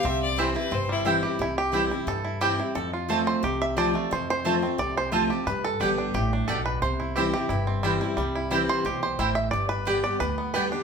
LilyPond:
<<
  \new Staff \with { instrumentName = "Fiddle" } { \time 4/4 \key c \major \tempo 4 = 177 e''8 d''8 c''8 b'8 c''8 e'8 r4 | r1 | r1 | r1 |
r1 | r1 | r1 | r1 | }
  \new Staff \with { instrumentName = "Mandolin" } { \time 4/4 \key c \major r4 <c' e' c'' g''>16 r4. r16 <c' e' c'' g''>16 r8. | r4 <c' e' c'' g''>16 r4. r16 <c' e' c'' g''>16 r8. | r4 <c' f' c'' a''>16 r4. r16 <c' f' c'' a''>16 r8. | r4 <c' f' c'' a''>16 r4. r16 <c' f' c'' a''>16 r8. |
r4 <b g' d'' g''>16 r4. r16 <b g' d'' g''>16 r8. | r4 <c' e' c'' g''>16 r4. r16 <c' e' c'' g''>16 r8. | r4 <c' e' c'' g''>16 r4. r16 <c' e' c'' g''>16 r8. | r4 <b g' d'' g''>16 r4. r16 <b g' d'' g''>16 r8. | }
  \new Staff \with { instrumentName = "Five-string banjo" } { \time 4/4 \key c \major << { r1 | e'8 g'4. a'4 g'4 | a'4. c''8 r8 e''8 d''4 | c''8 c''4. d''8 c''4. |
b'8 a'4. g'8 r8 a'8 b'8 | c''4. g'2~ g'8 | r4. c''4 c''4 e''8 | d''8 b'4 d''8 b'4 b'4 | } \\ { c'4 e8 e'8 c'8 g8 e'8 g'8 | r4 g'8 e'4 e'4 e'8 | r8 f'8 a4 g'4. a8~ | a4 a8 c'4. f'8 g'8 |
r4 g'8 d'4 d'4. | r8 e'8 g'4 e'8 c'8 g8 e'8 | g8 e'8 g4 g'4 e'4 | r4 g'4. b4 d'8 | } >> }
  \new Staff \with { instrumentName = "Steel-string acoustic guitar" } { \time 4/4 \key c \major << { r4 <e g c' e'>8 <c' e'>8 r4 <e g c' e'>8 <c' e'>8 | r4 <e g c' e'>8 <c' e'>8 r4 <e g c' e'>8 <c' e'>8 | r4 <f a c' f'>4 r4 <f a c' f'>8 <c' f'>8 | r4 <f a c' f'>8 <c' f'>8 r4 <f a c' f'>8 <c' f'>8 |
r4 <d g b g'>4 r2 | r4 <e g c' e'>8 <c' e'>8 r4 <e g c' e'>8 <c' e'>8 | r4 <e g c' e'>4 r2 | r4 <d g b g'>8 <b g'>8 r4 <d g b g'>8 <b g'>8 | } \\ { c2 g,2 | c2 g,2 | f,2 c2 | f,2 c2 |
g,2 a,4 b,4 | c2 g,2 | c2 b,4 a,4 | g,2 d2 | } >> }
  \new Staff \with { instrumentName = "Upright bass" } { \clef bass \time 4/4 \key c \major c,2 g,,2 | c,2 g,2 | f,2 c,2 | f,2 c,2 |
g,4 g,,4 a,,4 b,,4 | c,2 g,,2 | c,2 b,,4 a,,4 | g,,2 d,2 | }
>>